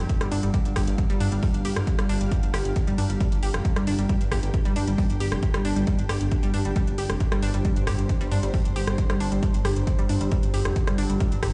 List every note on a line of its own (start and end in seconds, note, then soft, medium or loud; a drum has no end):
0.00 9.41 G2 medium
0.00 11.53 D4 medium
0.00 11.53 G4 medium
0.00 3.06 F5 medium
0.09 kick loud
0.09 closed hi-hat medium
0.21 0.28 G1 medium
0.21 0.27 G3 loud
0.21 cross-stick medium
0.21 closed hi-hat medium
0.31 0.39 G1 medium
0.31 0.39 D4 loud
0.31 open hi-hat loud
0.43 0.50 G1 medium
0.43 0.47 G3 medium
0.43 closed hi-hat medium
0.54 0.58 G3 medium
0.54 kick loud
0.54 closed hi-hat medium
0.65 0.72 G1 medium
0.65 closed hi-hat medium
0.76 0.83 G1 loud
0.76 0.80 G4 loud
0.76 kick medium
0.76 cross-stick medium
0.76 open hi-hat loud
0.87 0.94 G1 loud
0.87 closed hi-hat medium
0.98 kick loud
0.98 closed hi-hat medium
1.10 1.16 G1 medium
1.10 1.16 G3 loud
1.10 closed hi-hat medium
1.20 1.28 G2 loud
1.20 1.28 D4 loud
1.20 open hi-hat loud
1.32 1.39 G1 medium
1.32 1.36 G3 medium
1.32 closed hi-hat medium
1.43 1.47 G3 medium
1.43 kick loud
1.43 open hi-hat medium
1.54 1.61 G1 medium
1.54 closed hi-hat medium
1.65 1.72 G1 medium
1.65 1.69 G4 loud
1.65 open hi-hat loud
1.76 1.83 G2 loud
1.76 cross-stick medium
1.76 closed hi-hat medium
1.87 kick loud
1.87 closed hi-hat medium
1.99 2.05 G1 medium
1.99 2.05 G3 loud
1.99 cross-stick medium
1.99 closed hi-hat medium
2.09 2.17 G1 loud
2.09 2.16 D4 loud
2.09 open hi-hat loud
2.21 2.28 G1 medium
2.21 2.25 G3 medium
2.21 closed hi-hat medium
2.31 2.36 G3 medium
2.31 kick loud
2.31 closed hi-hat medium
2.43 2.50 G1 medium
2.43 closed hi-hat medium
2.54 2.61 G1 loud
2.54 2.58 G4 loud
2.54 cross-stick medium
2.54 open hi-hat loud
2.65 2.72 G1 loud
2.65 closed hi-hat medium
2.76 kick loud
2.76 closed hi-hat medium
2.87 2.94 G1 medium
2.87 2.94 G3 loud
2.87 closed hi-hat medium
2.98 3.06 G2 loud
2.98 3.05 D4 loud
2.98 open hi-hat loud
3.03 6.61 G5 medium
3.10 3.17 G1 medium
3.10 3.16 G3 medium
3.10 closed hi-hat medium
3.20 3.25 G3 medium
3.20 kick loud
3.20 closed hi-hat medium
3.32 3.39 G1 medium
3.32 closed hi-hat medium
3.43 3.50 G1 medium
3.43 3.47 G4 loud
3.43 open hi-hat loud
3.54 3.61 F1 medium
3.54 cross-stick medium
3.54 closed hi-hat medium
3.65 kick loud
3.65 closed hi-hat medium
3.76 3.83 G1 medium
3.76 3.83 G3 loud
3.76 cross-stick medium
3.76 closed hi-hat medium
3.87 3.94 G1 loud
3.87 3.94 D4 loud
3.87 open hi-hat loud
3.98 4.05 G1 medium
3.98 4.05 G3 medium
3.98 closed hi-hat medium
4.09 4.14 G3 medium
4.09 kick loud
4.09 closed hi-hat medium
4.21 4.28 G1 medium
4.21 closed hi-hat medium
4.32 4.39 G1 loud
4.32 4.36 G4 loud
4.32 kick medium
4.32 cross-stick medium
4.32 open hi-hat loud
4.43 4.50 G1 loud
4.43 closed hi-hat medium
4.54 kick loud
4.54 closed hi-hat medium
4.65 4.72 G1 medium
4.65 4.72 G3 loud
4.65 closed hi-hat medium
4.76 4.83 G2 loud
4.76 4.83 D4 loud
4.76 open hi-hat loud
4.87 4.94 G1 medium
4.87 4.94 G3 medium
4.87 closed hi-hat medium
4.98 5.02 G3 medium
4.98 kick loud
4.98 open hi-hat medium
5.10 5.16 G1 medium
5.10 closed hi-hat medium
5.20 5.28 G1 loud
5.20 5.25 G4 loud
5.20 open hi-hat loud
5.32 5.39 F1 medium
5.32 cross-stick medium
5.32 closed hi-hat medium
5.43 kick loud
5.43 closed hi-hat medium
5.54 5.61 G1 medium
5.54 5.61 G3 loud
5.54 cross-stick medium
5.54 closed hi-hat medium
5.65 5.72 G1 loud
5.65 5.72 D4 loud
5.65 open hi-hat loud
5.76 5.83 G1 medium
5.76 5.83 G3 medium
5.76 closed hi-hat medium
5.87 5.91 G3 medium
5.87 kick loud
5.87 closed hi-hat medium
5.99 6.05 G1 medium
5.99 closed hi-hat medium
6.09 6.17 G1 medium
6.09 6.14 G4 loud
6.09 cross-stick medium
6.09 open hi-hat loud
6.21 6.28 G1 loud
6.21 closed hi-hat medium
6.31 kick loud
6.31 closed hi-hat medium
6.43 6.50 G1 medium
6.43 6.50 G3 loud
6.43 closed hi-hat medium
6.54 6.61 G2 loud
6.54 6.61 D4 loud
6.54 open hi-hat loud
6.59 10.17 C5 medium
6.65 6.72 G1 medium
6.65 6.72 G3 medium
6.65 closed hi-hat medium
6.76 6.80 G3 medium
6.76 kick loud
6.76 closed hi-hat medium
6.87 6.94 G1 medium
6.87 closed hi-hat medium
6.98 7.06 G1 medium
6.98 7.02 G4 loud
6.98 open hi-hat loud
7.10 7.17 F1 medium
7.10 cross-stick medium
7.10 closed hi-hat medium
7.20 kick loud
7.20 closed hi-hat medium
7.32 7.39 G1 medium
7.32 7.39 G3 loud
7.32 cross-stick medium
7.32 closed hi-hat medium
7.43 7.50 G1 medium
7.43 7.50 D4 loud
7.43 open hi-hat loud
7.54 7.61 G1 medium
7.54 7.61 G3 medium
7.54 closed hi-hat medium
7.65 7.69 G3 medium
7.65 kick loud
7.65 closed hi-hat medium
7.76 7.83 G1 medium
7.76 closed hi-hat medium
7.87 7.94 G1 loud
7.87 7.91 G4 loud
7.87 kick medium
7.87 cross-stick medium
7.87 open hi-hat loud
7.99 8.05 G1 loud
7.99 closed hi-hat medium
8.09 kick loud
8.09 closed hi-hat medium
8.21 8.28 G1 medium
8.21 8.27 G3 loud
8.21 closed hi-hat medium
8.32 8.39 G2 loud
8.32 8.39 D4 loud
8.32 open hi-hat loud
8.43 8.50 G1 medium
8.43 8.50 G3 medium
8.43 closed hi-hat medium
8.54 8.58 G3 medium
8.54 kick loud
8.54 open hi-hat medium
8.65 8.72 F1 medium
8.65 closed hi-hat medium
8.76 8.83 G1 medium
8.76 8.80 G4 loud
8.76 open hi-hat loud
8.87 8.94 G1 medium
8.87 cross-stick medium
8.87 closed hi-hat medium
8.98 kick loud
8.98 closed hi-hat medium
9.10 9.16 G#1 medium
9.10 9.16 G3 loud
9.10 cross-stick medium
9.10 closed hi-hat medium
9.20 9.28 G1 loud
9.20 9.28 D4 loud
9.20 open hi-hat loud
9.32 9.39 G1 medium
9.32 9.39 G3 medium
9.32 closed hi-hat medium
9.43 11.53 G2 medium
9.43 9.47 G3 medium
9.43 kick loud
9.43 closed hi-hat medium
9.54 9.61 G1 medium
9.54 closed hi-hat medium
9.65 9.72 G1 loud
9.65 9.69 G4 loud
9.65 cross-stick medium
9.65 open hi-hat loud
9.76 9.83 G1 loud
9.76 closed hi-hat medium
9.87 kick loud
9.87 closed hi-hat medium
9.99 10.05 G1 medium
9.99 10.05 G3 loud
9.99 closed hi-hat medium
10.09 10.17 G2 loud
10.09 10.17 D4 loud
10.09 open hi-hat loud
10.14 11.53 G5 medium
10.21 10.28 G1 medium
10.21 10.28 G3 medium
10.21 closed hi-hat medium
10.31 10.36 G3 medium
10.31 kick loud
10.31 closed hi-hat medium
10.43 10.50 G1 medium
10.43 closed hi-hat medium
10.54 10.61 G1 medium
10.54 10.58 G4 loud
10.54 open hi-hat loud
10.65 10.72 F1 medium
10.65 cross-stick medium
10.65 closed hi-hat medium
10.76 kick loud
10.76 closed hi-hat medium
10.87 10.94 G1 medium
10.87 10.94 G3 loud
10.87 cross-stick medium
10.87 closed hi-hat medium
10.98 11.05 G1 loud
10.98 11.05 D4 loud
10.98 open hi-hat loud
11.10 11.16 G1 medium
11.10 11.16 G3 medium
11.10 closed hi-hat medium
11.20 11.25 G3 medium
11.20 kick loud
11.20 closed hi-hat medium
11.32 11.39 G1 medium
11.32 closed hi-hat medium
11.43 11.50 G1 loud
11.43 11.47 G4 loud
11.43 kick medium
11.43 cross-stick medium
11.43 open hi-hat loud